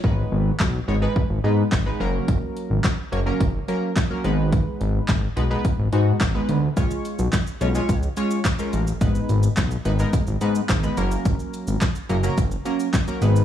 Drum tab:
HH |----------------|x-x-x-x-x-x-x-x-|x-x-x-x-x-x-x-x-|x-x-x-x-x-x-x-x-|
SH |----------------|----------------|----------------|xxxxxxxxxxxxxxxx|
CP |----x-------x---|----x-------x---|----x-------x---|----x-------x---|
SD |----o-------o---|----o-------o---|----o-------o---|----o-------o---|
BD |o---o---o---o---|o---o---o---o---|o---o---o---o---|o---o---o---o---|

HH |x-x-x-x-x-x-x-x-|x-x-x-x-x-x-x-x-|
SH |xxxxxxxxxxxxxxxx|xxxxxxxxxxxxxxxx|
CP |----x-------x---|----x-------x---|
SD |----o-------o---|----o-------o---|
BD |o---o---o---o---|o---o---o---o---|